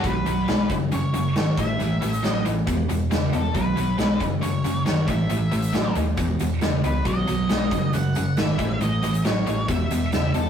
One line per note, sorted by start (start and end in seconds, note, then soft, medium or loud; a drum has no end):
0.04 0.21 B1 medium
0.04 0.24 B2 medium
0.04 0.24 F#3 medium
0.04 0.72 B4 medium
0.04 kick loud
0.04 closed hi-hat medium
0.26 0.44 B1 medium
0.26 0.46 B2 medium
0.26 0.46 F#3 medium
0.26 closed hi-hat medium
0.48 0.65 B1 medium
0.48 0.68 B2 medium
0.48 0.68 G#3 medium
0.48 snare loud
0.48 closed hi-hat soft
0.70 0.87 F#1 medium
0.70 0.90 F#2 medium
0.70 0.90 C#3 medium
0.70 kick medium
0.70 closed hi-hat medium
0.92 1.09 F#1 medium
0.92 1.12 F#2 medium
0.92 1.12 C#3 medium
0.92 1.33 C#5 medium
0.92 closed hi-hat medium
1.14 1.31 F#1 medium
1.14 1.33 F#2 medium
1.14 1.34 C#3 medium
1.14 closed hi-hat medium
1.36 1.53 G#1 medium
1.36 1.56 F#2 medium
1.36 1.56 D#3 medium
1.36 1.59 C#5 medium
1.36 snare loud
1.36 closed hi-hat medium
1.57 1.75 A1 medium
1.57 1.78 A2 medium
1.57 1.78 E3 medium
1.57 2.15 E5 loud
1.57 kick medium
1.57 closed hi-hat medium
1.80 1.97 A1 medium
1.80 2.00 A2 medium
1.80 2.00 E3 medium
1.80 closed hi-hat medium
2.02 2.19 A1 medium
2.02 2.21 A2 medium
2.02 2.22 E3 medium
2.02 closed hi-hat medium
2.13 2.42 D#5 loud
2.13 closed hi-hat medium
2.24 2.41 A1 medium
2.24 2.43 A2 medium
2.24 2.44 F#3 medium
2.24 snare medium
2.24 closed hi-hat medium
2.45 2.63 A1 medium
2.45 2.65 A2 medium
2.45 2.65 E3 medium
2.45 closed hi-hat medium
2.67 2.84 E1 medium
2.67 2.87 E2 medium
2.67 2.87 B2 medium
2.67 kick loud
2.67 closed hi-hat medium
2.89 3.06 E1 medium
2.89 3.09 E2 medium
2.89 3.09 B2 medium
2.89 closed hi-hat medium
3.11 3.28 E1 medium
3.11 3.31 E2 medium
3.11 3.31 C#3 medium
3.11 snare medium
3.11 closed hi-hat medium
3.33 3.50 E1 medium
3.33 3.53 E2 medium
3.33 3.53 B2 medium
3.33 3.56 A4 medium
3.33 closed hi-hat medium
3.55 3.72 B1 medium
3.55 3.74 B2 medium
3.55 3.75 F#3 medium
3.55 4.23 B4 medium
3.55 kick medium
3.55 closed hi-hat soft
3.76 3.94 B1 medium
3.76 3.97 B2 medium
3.76 3.97 F#3 medium
3.76 closed hi-hat medium
3.99 4.16 B1 medium
3.99 4.18 B2 medium
3.99 4.19 G#3 medium
3.99 snare medium
3.99 closed hi-hat soft
4.20 4.38 F#1 medium
4.20 4.40 F#2 medium
4.20 4.40 C#3 medium
4.20 kick medium
4.20 closed hi-hat soft
4.41 4.59 F#1 medium
4.41 4.62 F#2 medium
4.41 4.62 C#3 medium
4.41 4.83 C#5 medium
4.41 closed hi-hat medium
4.64 4.81 F#1 medium
4.64 4.84 F#2 medium
4.64 4.84 C#3 medium
4.64 closed hi-hat medium
4.85 5.03 F#1 medium
4.85 5.06 F#2 medium
4.85 5.06 D#3 medium
4.85 5.09 C#5 medium
4.85 snare medium
4.85 closed hi-hat soft
5.07 5.25 A1 medium
5.07 5.28 A2 medium
5.07 5.28 E3 medium
5.07 5.91 E5 medium
5.07 kick medium
5.07 closed hi-hat medium
5.29 5.47 A1 medium
5.29 5.50 A2 medium
5.29 5.50 E3 medium
5.29 closed hi-hat medium
5.51 5.69 A1 medium
5.51 5.72 A2 medium
5.51 5.72 E3 medium
5.51 closed hi-hat medium
5.62 closed hi-hat medium
5.73 5.91 A1 medium
5.73 5.93 A2 medium
5.73 5.94 F#3 medium
5.73 snare medium
5.73 closed hi-hat medium
5.95 6.13 D#2 medium
5.95 6.16 A2 medium
5.95 6.16 E3 medium
5.95 closed hi-hat medium
6.17 6.35 E1 medium
6.17 6.38 E2 medium
6.17 6.38 B2 medium
6.17 kick medium
6.17 closed hi-hat medium
6.39 6.57 E1 medium
6.39 6.60 E2 medium
6.39 6.60 B2 medium
6.39 closed hi-hat medium
6.61 6.79 E1 medium
6.61 6.82 E2 medium
6.61 6.82 C#3 medium
6.61 snare loud
6.61 closed hi-hat medium
6.84 7.01 C#2 medium
6.84 7.04 E2 medium
6.84 7.04 B2 medium
6.84 7.07 B4 medium
6.84 closed hi-hat medium
7.05 7.23 B1 medium
7.05 7.26 B2 medium
7.05 7.26 F#3 medium
7.05 7.94 D#5 medium
7.05 kick medium
7.05 closed hi-hat soft
7.28 7.45 B1 medium
7.28 7.47 B2 medium
7.28 7.48 F#3 medium
7.28 closed hi-hat medium
7.49 7.67 B1 medium
7.49 7.69 B2 medium
7.49 7.69 G#3 medium
7.49 snare loud
7.49 closed hi-hat soft
7.71 7.89 F#1 medium
7.71 7.91 F#2 medium
7.71 7.92 C#3 medium
7.71 kick medium
7.71 closed hi-hat medium
7.93 8.11 F#1 medium
7.93 8.14 F#2 medium
7.93 8.14 C#3 medium
7.93 8.39 F#5 medium
7.93 closed hi-hat medium
8.15 8.33 F#1 medium
8.15 8.36 F#2 medium
8.15 8.36 C#3 medium
8.15 closed hi-hat soft
8.37 8.55 G#1 medium
8.37 8.57 F#2 medium
8.37 8.58 D#3 medium
8.37 8.82 E5 medium
8.37 snare medium
8.37 closed hi-hat soft
8.59 8.76 A1 medium
8.59 8.79 A2 medium
8.59 8.79 E3 medium
8.59 kick medium
8.59 closed hi-hat soft
8.81 8.99 A1 medium
8.81 9.01 A2 medium
8.81 9.01 E3 medium
8.81 9.25 D#5 medium
8.81 closed hi-hat soft
9.03 9.20 A1 medium
9.03 9.23 A2 medium
9.03 9.23 E3 medium
9.03 closed hi-hat medium
9.14 closed hi-hat medium
9.25 9.42 A1 medium
9.25 9.45 A2 medium
9.25 9.45 F#3 medium
9.25 9.69 C#5 medium
9.25 snare medium
9.25 closed hi-hat medium
9.46 9.64 A1 medium
9.46 9.66 A2 medium
9.46 9.67 E3 medium
9.46 closed hi-hat medium
9.68 9.86 E1 medium
9.68 9.88 E2 medium
9.68 9.89 B2 medium
9.68 10.37 E5 medium
9.68 kick loud
9.68 closed hi-hat medium
9.91 10.08 E1 medium
9.91 10.11 E2 medium
9.91 10.11 B2 medium
9.91 closed hi-hat medium
10.12 10.30 E1 medium
10.12 10.32 E2 medium
10.12 10.32 C#3 medium
10.12 snare medium
10.12 closed hi-hat medium
10.34 10.50 E1 medium
10.34 10.50 E2 medium
10.34 10.50 B2 medium
10.34 10.50 A4 medium
10.34 closed hi-hat medium